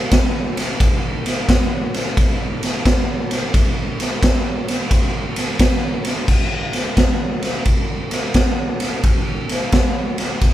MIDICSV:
0, 0, Header, 1, 2, 480
1, 0, Start_track
1, 0, Tempo, 686499
1, 561, Time_signature, 4, 2, 24, 8
1, 7367, End_track
2, 0, Start_track
2, 0, Title_t, "Drums"
2, 80, Note_on_c, 9, 51, 99
2, 82, Note_on_c, 9, 36, 92
2, 88, Note_on_c, 9, 38, 120
2, 150, Note_off_c, 9, 51, 0
2, 152, Note_off_c, 9, 36, 0
2, 158, Note_off_c, 9, 38, 0
2, 400, Note_on_c, 9, 51, 77
2, 408, Note_on_c, 9, 38, 41
2, 470, Note_off_c, 9, 51, 0
2, 478, Note_off_c, 9, 38, 0
2, 561, Note_on_c, 9, 36, 101
2, 562, Note_on_c, 9, 51, 96
2, 569, Note_on_c, 9, 38, 35
2, 631, Note_off_c, 9, 36, 0
2, 632, Note_off_c, 9, 51, 0
2, 639, Note_off_c, 9, 38, 0
2, 879, Note_on_c, 9, 51, 68
2, 887, Note_on_c, 9, 38, 39
2, 949, Note_off_c, 9, 51, 0
2, 957, Note_off_c, 9, 38, 0
2, 1039, Note_on_c, 9, 36, 90
2, 1040, Note_on_c, 9, 51, 89
2, 1047, Note_on_c, 9, 38, 120
2, 1109, Note_off_c, 9, 36, 0
2, 1110, Note_off_c, 9, 51, 0
2, 1117, Note_off_c, 9, 38, 0
2, 1359, Note_on_c, 9, 51, 63
2, 1367, Note_on_c, 9, 38, 37
2, 1429, Note_off_c, 9, 51, 0
2, 1437, Note_off_c, 9, 38, 0
2, 1519, Note_on_c, 9, 36, 86
2, 1520, Note_on_c, 9, 51, 84
2, 1528, Note_on_c, 9, 38, 34
2, 1589, Note_off_c, 9, 36, 0
2, 1590, Note_off_c, 9, 51, 0
2, 1597, Note_off_c, 9, 38, 0
2, 1837, Note_on_c, 9, 51, 63
2, 1845, Note_on_c, 9, 38, 39
2, 1907, Note_off_c, 9, 51, 0
2, 1915, Note_off_c, 9, 38, 0
2, 1996, Note_on_c, 9, 36, 89
2, 1996, Note_on_c, 9, 51, 89
2, 2004, Note_on_c, 9, 38, 118
2, 2066, Note_off_c, 9, 36, 0
2, 2066, Note_off_c, 9, 51, 0
2, 2074, Note_off_c, 9, 38, 0
2, 2313, Note_on_c, 9, 51, 70
2, 2321, Note_on_c, 9, 38, 42
2, 2383, Note_off_c, 9, 51, 0
2, 2391, Note_off_c, 9, 38, 0
2, 2476, Note_on_c, 9, 36, 98
2, 2476, Note_on_c, 9, 51, 91
2, 2484, Note_on_c, 9, 38, 35
2, 2546, Note_off_c, 9, 36, 0
2, 2546, Note_off_c, 9, 51, 0
2, 2554, Note_off_c, 9, 38, 0
2, 2795, Note_on_c, 9, 51, 69
2, 2803, Note_on_c, 9, 38, 39
2, 2865, Note_off_c, 9, 51, 0
2, 2873, Note_off_c, 9, 38, 0
2, 2955, Note_on_c, 9, 36, 92
2, 2956, Note_on_c, 9, 51, 90
2, 2964, Note_on_c, 9, 38, 122
2, 3025, Note_off_c, 9, 36, 0
2, 3026, Note_off_c, 9, 51, 0
2, 3034, Note_off_c, 9, 38, 0
2, 3275, Note_on_c, 9, 51, 72
2, 3282, Note_on_c, 9, 38, 38
2, 3345, Note_off_c, 9, 51, 0
2, 3352, Note_off_c, 9, 38, 0
2, 3433, Note_on_c, 9, 36, 92
2, 3433, Note_on_c, 9, 51, 95
2, 3440, Note_on_c, 9, 38, 35
2, 3503, Note_off_c, 9, 36, 0
2, 3503, Note_off_c, 9, 51, 0
2, 3510, Note_off_c, 9, 38, 0
2, 3749, Note_on_c, 9, 51, 71
2, 3757, Note_on_c, 9, 38, 38
2, 3819, Note_off_c, 9, 51, 0
2, 3827, Note_off_c, 9, 38, 0
2, 3911, Note_on_c, 9, 51, 102
2, 3912, Note_on_c, 9, 36, 89
2, 3919, Note_on_c, 9, 38, 120
2, 3981, Note_off_c, 9, 51, 0
2, 3982, Note_off_c, 9, 36, 0
2, 3989, Note_off_c, 9, 38, 0
2, 4227, Note_on_c, 9, 51, 74
2, 4235, Note_on_c, 9, 38, 40
2, 4297, Note_off_c, 9, 51, 0
2, 4305, Note_off_c, 9, 38, 0
2, 4391, Note_on_c, 9, 49, 89
2, 4392, Note_on_c, 9, 36, 84
2, 4461, Note_off_c, 9, 49, 0
2, 4462, Note_off_c, 9, 36, 0
2, 4707, Note_on_c, 9, 51, 55
2, 4715, Note_on_c, 9, 38, 35
2, 4777, Note_off_c, 9, 51, 0
2, 4785, Note_off_c, 9, 38, 0
2, 4872, Note_on_c, 9, 51, 78
2, 4874, Note_on_c, 9, 36, 85
2, 4880, Note_on_c, 9, 38, 108
2, 4942, Note_off_c, 9, 51, 0
2, 4944, Note_off_c, 9, 36, 0
2, 4950, Note_off_c, 9, 38, 0
2, 5192, Note_on_c, 9, 51, 58
2, 5199, Note_on_c, 9, 38, 33
2, 5262, Note_off_c, 9, 51, 0
2, 5269, Note_off_c, 9, 38, 0
2, 5352, Note_on_c, 9, 51, 73
2, 5355, Note_on_c, 9, 36, 77
2, 5422, Note_off_c, 9, 51, 0
2, 5425, Note_off_c, 9, 36, 0
2, 5671, Note_on_c, 9, 51, 56
2, 5679, Note_on_c, 9, 38, 33
2, 5741, Note_off_c, 9, 51, 0
2, 5748, Note_off_c, 9, 38, 0
2, 5832, Note_on_c, 9, 51, 78
2, 5836, Note_on_c, 9, 36, 81
2, 5840, Note_on_c, 9, 38, 106
2, 5902, Note_off_c, 9, 51, 0
2, 5906, Note_off_c, 9, 36, 0
2, 5910, Note_off_c, 9, 38, 0
2, 6153, Note_on_c, 9, 51, 65
2, 6160, Note_on_c, 9, 38, 37
2, 6222, Note_off_c, 9, 51, 0
2, 6230, Note_off_c, 9, 38, 0
2, 6317, Note_on_c, 9, 51, 81
2, 6319, Note_on_c, 9, 36, 87
2, 6387, Note_off_c, 9, 51, 0
2, 6389, Note_off_c, 9, 36, 0
2, 6637, Note_on_c, 9, 51, 63
2, 6645, Note_on_c, 9, 38, 35
2, 6707, Note_off_c, 9, 51, 0
2, 6715, Note_off_c, 9, 38, 0
2, 6798, Note_on_c, 9, 51, 80
2, 6801, Note_on_c, 9, 36, 84
2, 6806, Note_on_c, 9, 38, 104
2, 6868, Note_off_c, 9, 51, 0
2, 6871, Note_off_c, 9, 36, 0
2, 6876, Note_off_c, 9, 38, 0
2, 7118, Note_on_c, 9, 51, 62
2, 7125, Note_on_c, 9, 38, 33
2, 7188, Note_off_c, 9, 51, 0
2, 7195, Note_off_c, 9, 38, 0
2, 7282, Note_on_c, 9, 51, 78
2, 7283, Note_on_c, 9, 36, 76
2, 7289, Note_on_c, 9, 38, 31
2, 7351, Note_off_c, 9, 51, 0
2, 7353, Note_off_c, 9, 36, 0
2, 7359, Note_off_c, 9, 38, 0
2, 7367, End_track
0, 0, End_of_file